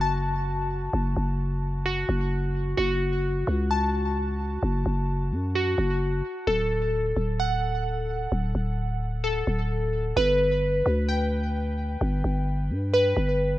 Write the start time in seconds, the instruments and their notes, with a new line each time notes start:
Already playing: 808-style bass F#1, synth keys F#4
0.01 synth keys A5
0.93 808-style bass F#1
1.16 808-style bass F#1
1.86 synth keys F#4
2.09 808-style bass F#1
2.77 808-style bass F#1, synth keys F#4
3.47 808-style bass C#2
3.71 synth keys A5
4.63 808-style bass F#1
4.86 808-style bass F#1
5.32 808-style bass F#2
5.55 synth keys F#4
5.78 808-style bass F#1
6.47 808-style bass D1, synth keys A4
7.17 808-style bass D1
7.40 synth keys F#5
8.32 808-style bass D1
8.55 808-style bass D1
9.24 synth keys A4
9.47 808-style bass D1
10.16 808-style bass G1, synth keys B4
10.86 808-style bass D2
11.09 synth keys G5
12.01 808-style bass G1
12.24 808-style bass G1
12.70 808-style bass G2
12.94 synth keys B4
13.17 808-style bass G1